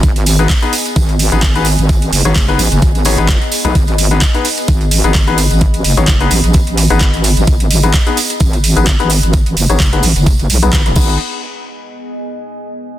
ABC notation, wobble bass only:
X:1
M:4/4
L:1/16
Q:"Swing 16ths" 1/4=129
K:G#m
V:1 name="Wobble bass" clef=bass
G,,,4 z4 G,,,3 G,,,4 G,,,- | G,,,2 F,,, G,,, F,,,2 =A,,, F,,, G,,,3 G,,,2 z2 B,,, | G,,,4 z4 G,,,3 G,,,4 G,,,- | G,,,2 F,,, G,,, F,,,2 =A,,, A,,,4 G,,,4 G,,, |
G,,,4 z4 G,,,3 G,,,4 G,,,- | G,,,2 F,,, G,,, F,,,2 =A,,, F,,,2 F,,, B,,,2 G,,,2 G,,,2 | z16 |]